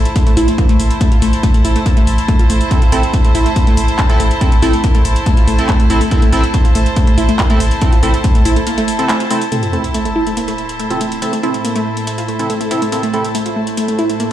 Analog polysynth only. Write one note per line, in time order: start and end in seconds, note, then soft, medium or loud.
2.71 2.81 C4 medium
2.71 2.81 E4 medium
2.71 2.81 A4 medium
2.92 3.02 C4 loud
2.92 3.02 E4 medium
2.92 3.02 A4 loud
4.10 4.19 C4 medium
4.10 4.19 E4 medium
4.10 4.19 A4 loud
4.41 4.51 C4 medium
4.41 4.51 E4 medium
4.41 4.51 A4 medium
4.63 4.72 C4 loud
4.63 4.72 E4 medium
4.63 4.72 A4 loud
5.59 5.68 C4 medium
5.59 5.68 E4 medium
5.59 5.68 A4 loud
5.90 6.00 C4 medium
5.90 6.00 E4 medium
5.90 6.00 A4 loud
6.11 6.21 C4 medium
6.11 6.21 E4 medium
6.11 6.21 A4 medium
6.33 6.43 C4 loud
6.33 6.43 E4 medium
6.33 6.43 A4 loud
7.50 7.59 C4 medium
7.50 7.59 E4 medium
7.50 7.59 A4 loud
7.82 7.92 C4 medium
7.82 7.91 E4 medium
7.82 7.91 A4 medium
8.03 8.13 C4 loud
8.03 8.13 E4 medium
8.03 8.13 A4 loud
8.99 9.08 C4 medium
8.99 9.08 E4 medium
8.99 9.08 A4 loud
9.31 9.40 C4 medium
9.31 9.40 E4 medium
9.31 9.40 A4 loud
9.52 9.62 C4 medium
9.52 9.62 E4 medium
9.52 9.62 A4 medium
9.73 9.83 C4 medium
9.73 9.83 E4 medium
9.73 9.83 A4 loud
10.90 11.00 C4 medium
10.90 11.00 E4 medium
10.90 11.00 A4 loud
11.22 11.32 C4 medium
11.22 11.32 E4 medium
11.22 11.32 A4 medium
11.43 11.53 C4 medium
11.43 11.53 E4 medium
11.43 11.53 A4 loud
12.39 12.49 C4 medium
12.39 12.49 E4 medium
12.39 12.49 A4 loud
12.71 12.81 C4 medium
12.71 12.81 E4 medium
12.71 12.81 A4 medium
12.92 13.02 C4 medium
12.92 13.02 E4 medium
12.92 13.02 A4 medium
13.14 13.23 C4 medium
13.14 13.23 E4 medium
13.14 13.23 A4 loud